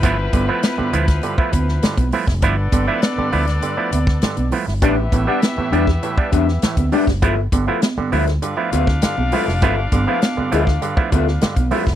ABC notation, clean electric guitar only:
X:1
M:4/4
L:1/16
Q:1/4=100
K:G
V:1 name="Clean electric guitar"
z16 | z16 | [DGBe] z2 [DGBf] z2 [DGBe] z3 [DGBe] z3 [DGBe] z | [=FABe] z2 [FAB=f] z2 [FABe] z3 [FABe] z3 [FABe] z |
[=FABe] z2 [FAB=f] z2 [FABe] z3 [FABe] z3 [FABe] z |]